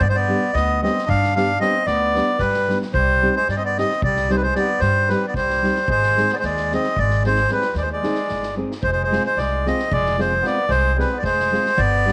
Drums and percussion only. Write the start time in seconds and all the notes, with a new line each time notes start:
0.01 kick
0.56 snare
0.85 snare
0.98 snare
1.09 kick
1.23 snare
1.37 snare
1.61 snare
1.86 snare
2.15 snare
2.38 kick, snare
2.54 snare
2.69 snare
2.82 snare
2.94 kick
3.48 snare
3.77 snare
3.89 snare
4.02 kick
4.16 snare
4.30 snare
4.55 snare
4.80 snare
5.09 snare
5.34 kick, snare
5.49 snare
5.64 snare
5.75 snare
5.88 kick
6.02 snare
6.17 snare
6.29 snare
6.42 snare
6.57 snare
6.71 snare
6.83 snare
6.97 kick
7.10 snare
7.23 snare
7.35 snare
7.48 snare
7.61 snare
7.74 snare
8.03 snare
8.14 snare
8.28 snare
8.43 snare
8.71 snare
8.83 kick
9.12 snare
9.38 snare
9.66 snare
9.79 snare
9.92 kick
10.06 snare
10.19 snare
10.45 snare
10.70 snare
10.99 snare
11.24 kick, snare
11.40 snare
11.54 snare
11.66 snare
11.78 kick
12.08 snare